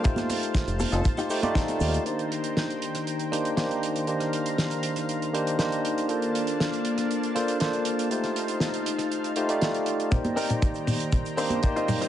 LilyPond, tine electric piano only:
\new Staff \with { instrumentName = "Tine electric piano" } { \time 4/4 \key c \dorian \tempo 4 = 119 <a ees' f' g' c''>2~ <a ees' f' g' c''>8 <a ees' f' g' c''>16 <a ees' f' g' d''>4~ <a ees' f' g' d''>16 | <bes d' ees' g' c''>2~ <bes d' ees' g' c''>8 <bes d' ees' g' c''>8 <bes d' ees' g' c''>4 | <bes d' ees' g' c''>2~ <bes d' ees' g' c''>8 <bes d' ees' g' c''>8 <bes d' ees' g' c''>4 | <bes d' f' a' c''>2~ <bes d' f' a' c''>8 <bes d' f' a' c''>8 <bes d' f' a' c''>4 |
<a ees' f' g' c''>2~ <a ees' f' g' c''>8 <a ees' f' g' c''>16 <a ees' f' g' d''>4~ <a ees' f' g' d''>16 | <bes ees' g' c'' d''>2~ <bes ees' g' c'' d''>8 <bes d' ees' g' c''>8 <bes ees' g' c'' d''>4 | }